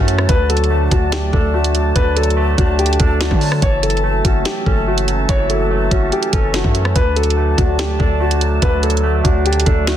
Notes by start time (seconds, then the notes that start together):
Already playing: F#2 E3 F#3 A3 C#4 F#4 E5 A5
0.08 F#3, closed hi-hat
0.18 cross-stick
0.29 D2 D3 B4 D5, kick, closed hi-hat
0.49 F#3 A4, closed hi-hat
0.57 closed hi-hat
0.64 closed hi-hat
0.70 A3
0.91 D2 D4 F#4, kick, closed hi-hat
1.12 G4, snare, closed hi-hat
1.33 D2 D4 A4, kick
1.54 A3 F#4
1.64 closed hi-hat
1.75 F#3, closed hi-hat
1.95 D2 D3 B4, kick, closed hi-hat
2.16 F#3 A4, closed hi-hat
2.23 closed hi-hat
2.30 closed hi-hat
2.37 A3
2.58 D2 D4 F#4, kick, closed hi-hat
2.79 G4, closed hi-hat
2.86 closed hi-hat
2.93 closed hi-hat
3.00 D2 D4 A4, kick, closed hi-hat
3.21 A3 F#4, snare, closed hi-hat
3.31 D3, kick
3.41 F#3, open hi-hat
3.52 cross-stick
3.62 F#1 E3 F#4 C#5 E5, kick, closed hi-hat
3.83 F#3 A4, closed hi-hat
3.90 closed hi-hat
3.97 closed hi-hat
4.04 A3
4.24 F#1 C#4 F#4, kick, closed hi-hat
4.45 G4, snare, closed hi-hat
4.66 F#1 C#4 A4, kick
4.87 A3 F#4
4.98 closed hi-hat
5.07 F#3, closed hi-hat
5.29 F#1 C#5, kick, closed hi-hat
5.50 F#3 A4, closed hi-hat
5.71 A3
5.91 F#1 C#4 F#4, kick, closed hi-hat
6.12 G4, closed hi-hat
6.23 closed hi-hat
6.33 F#1 C#4 A4, kick, closed hi-hat
6.54 A3 F#4, snare, closed hi-hat
6.64 F#2, kick
6.74 F#3, closed hi-hat
6.85 cross-stick
6.95 D2 D3 B4 D5 A5, kick, closed hi-hat
7.16 F#3 A4, closed hi-hat
7.23 closed hi-hat
7.30 closed hi-hat
7.37 A3
7.58 D2 D4 F#4, kick, closed hi-hat
7.79 G4, snare, closed hi-hat
7.99 D2 D4 A4, kick
8.20 A3 F#4
8.31 closed hi-hat
8.41 F#3, closed hi-hat
8.62 D2 D3 B4, kick, closed hi-hat
8.83 F#3 A4, closed hi-hat
8.90 closed hi-hat
8.97 closed hi-hat
9.03 A3
9.24 D2 D4 F#4, kick, closed hi-hat
9.46 G4, closed hi-hat
9.53 closed hi-hat
9.60 closed hi-hat
9.66 D2 D4 A4, kick, closed hi-hat
9.87 A3 F#4, snare, closed hi-hat